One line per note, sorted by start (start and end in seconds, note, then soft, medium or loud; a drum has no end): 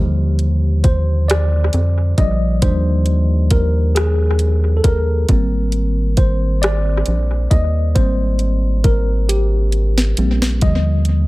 0.00 1.70 D#2 medium
0.00 2.59 D3 medium
0.00 2.17 F3 soft
0.00 2.18 G3 soft
0.00 0.16 G4 soft
0.00 0.16 C5 soft
0.39 closed hi-hat soft
0.84 1.04 C5 medium
0.84 kick medium
0.84 closed hi-hat medium
1.28 2.18 D5 medium
1.28 cross-stick medium
1.28 closed hi-hat medium
1.73 2.14 F2 medium
1.73 closed hi-hat soft
2.18 2.64 A#1 medium
2.18 2.59 F3 soft
2.18 2.59 G3 soft
2.18 2.59 D5 soft
2.18 2.64 D#5 medium
2.18 kick medium
2.18 closed hi-hat medium
2.62 4.81 D#2 medium
2.62 3.92 F3 soft
2.62 3.92 G3 soft
2.62 3.93 D4 soft
2.62 3.54 C5 medium
2.62 kick medium
2.62 closed hi-hat medium
3.06 closed hi-hat soft
3.51 3.97 A#4 medium
3.51 kick medium
3.51 closed hi-hat medium
3.95 4.80 G#4 medium
3.95 cross-stick medium
3.95 closed hi-hat medium
4.39 closed hi-hat medium
4.77 4.84 A4 medium
4.84 5.25 D#2 medium
4.84 6.22 A#4 medium
4.84 kick medium
4.84 closed hi-hat medium
5.29 7.03 G#1 loud
5.29 6.58 G3 soft
5.29 6.58 A#3 soft
5.29 6.59 C4 soft
5.29 kick medium
5.29 closed hi-hat medium
5.72 closed hi-hat soft
6.17 6.63 C5 medium
6.17 kick medium
6.17 closed hi-hat medium
6.62 7.47 D5 medium
6.62 cross-stick loud
6.62 closed hi-hat medium
7.06 7.48 A#1 medium
7.06 closed hi-hat soft
7.51 7.98 D#2 medium
7.51 7.97 D#5 medium
7.51 kick medium
7.51 closed hi-hat medium
7.95 10.14 G#1 medium
7.95 8.55 G3 soft
7.95 8.55 A#3 soft
7.95 8.55 C4 medium
7.95 8.87 C5 medium
7.95 kick medium
7.95 closed hi-hat medium
8.39 closed hi-hat soft
8.84 9.30 A#4 medium
8.84 kick medium
8.84 closed hi-hat medium
9.29 10.25 G4 medium
9.29 closed hi-hat medium
9.72 closed hi-hat soft
9.98 snare medium
10.17 10.64 A#1 medium
10.17 10.58 G3 soft
10.17 10.59 A#3 soft
10.17 10.59 C4 soft
10.17 closed hi-hat medium
10.42 snare medium
10.61 11.28 D#2 loud
10.61 11.22 D3 soft
10.61 11.22 F3 soft
10.61 11.22 G3 soft
10.61 11.28 D#5 medium
10.61 kick medium
10.61 closed hi-hat medium
11.05 closed hi-hat soft